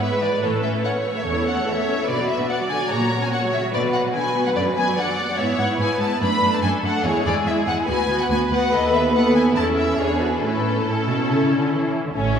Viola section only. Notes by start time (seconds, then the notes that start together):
Already playing: B4
0.00 B3
0.11 G#3
0.21 E3
0.31 G#3
0.41 E3
0.52 A3
0.62 C#4
0.73 E4
0.84 C#4
0.95 A3
1.03 E3
1.14 A3
1.24 C#4 A4
1.34 E4
1.44 C#4
1.55 A3
1.66 E3
1.77 A3
1.86 C#4
1.97 E4
2.07 D3 F#4
2.18 F#3
2.28 B3
2.39 D4
2.49 B3
2.60 F#3
2.69 D3
2.80 F#3
2.90 C#3
3.00 F#3
3.10 A#3
3.21 C#4
3.31 A#3
3.42 F#3
3.52 C#3
3.62 F#3
3.72 D3
3.83 F#3
3.93 B3
4.04 F#3
4.14 D3
4.25 F#3
4.35 B3
4.45 F#3
4.56 D3
4.66 F#3
4.77 B3
4.87 F#3
4.96 D3
5.07 F#3
5.18 B3
5.27 F#3
5.39 B3 E4
5.59 B3 E4
5.80 B3 E4
6.00 B3 E4
6.21 A3 D4
6.43 A3 D4
6.64 A3 D4
6.84 A3 D4
7.05 G#3 E4
7.26 G#3 E4
7.45 G#3 E4
7.67 G#3 E4
7.88 B3 F#4
8.09 B3 F#4
8.30 B3 F#4
8.51 B3 F#4
8.73 B3 A4
9.14 B3 A4
9.56 C#4 A4
9.98 D4 G#4
10.20 F#4
10.42 C#4 E4
10.86 C#4 E4
12.16 C#4 A4
12.26 C#5